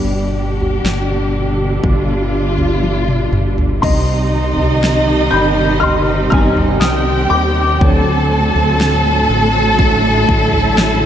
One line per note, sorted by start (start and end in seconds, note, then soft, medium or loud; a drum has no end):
0.00 0.81 G1 medium
0.00 3.78 B2 medium
0.00 3.78 D3 medium
0.00 0.51 G3 soft
0.00 3.79 G3 medium
0.00 0.51 B3 soft
0.00 0.52 D4 soft
0.00 3.79 D4 medium
0.00 1.82 G4 medium
0.61 floor tom medium
0.84 1.80 G1 medium
0.84 snare medium
1.84 3.28 G1 medium
1.84 3.81 F4 medium
1.84 kick medium
1.84 floor tom medium
2.58 floor tom medium
2.83 high tom medium
3.08 mid tom medium
3.32 3.79 G1 medium
3.32 mid tom medium
3.58 floor tom medium
3.82 4.54 C2 loud
3.82 7.77 C3 medium
3.82 7.77 D#3 medium
3.82 7.77 G3 medium
3.82 4.49 G3 medium
3.82 4.50 C4 soft
3.82 5.80 D#4 medium
3.82 6.78 D#4 medium
3.82 4.50 D#4 medium
3.82 6.78 D#5 loud
3.82 5.29 D#5 medium
3.82 5.37 C6 medium
3.82 kick loud
3.82 floor tom loud
3.82 crash loud
4.57 5.28 C2 medium
4.57 floor tom medium
4.84 snare loud
5.31 6.28 G1 medium
5.31 5.79 B5 medium
5.31 5.78 G6 loud
5.80 9.76 C4 medium
5.80 6.29 C6 medium
5.80 6.29 F6 loud
5.80 floor tom medium
6.30 6.78 G1 medium
6.30 6.78 G3 medium
6.30 6.78 C4 soft
6.30 6.78 D#4 medium
6.30 6.79 G#5 medium
6.30 6.77 F6 loud
6.30 kick medium
6.57 floor tom medium
6.80 7.28 C2 medium
6.80 7.79 G4 medium
6.80 7.79 G5 medium
6.80 6.95 G5 medium
6.80 6.91 D#6 medium
6.80 snare loud
7.30 7.77 D#2 medium
7.30 10.26 G5 medium
7.30 10.24 D6 loud
7.81 8.52 D2 loud
7.81 11.06 A2 medium
7.81 11.06 D3 medium
7.81 11.06 F#3 medium
7.81 8.48 F#3 medium
7.81 8.48 A3 medium
7.81 8.48 D4 medium
7.81 11.06 A4 medium
7.81 11.06 A5 loud
7.81 kick loud
7.81 floor tom loud
8.55 9.26 D2 medium
8.55 floor tom medium
8.81 snare loud
9.29 10.25 A1 medium
9.78 11.06 E4 medium
9.78 kick medium
9.78 floor tom medium
10.28 11.06 A1 medium
10.28 kick medium
10.53 floor tom medium
10.78 snare loud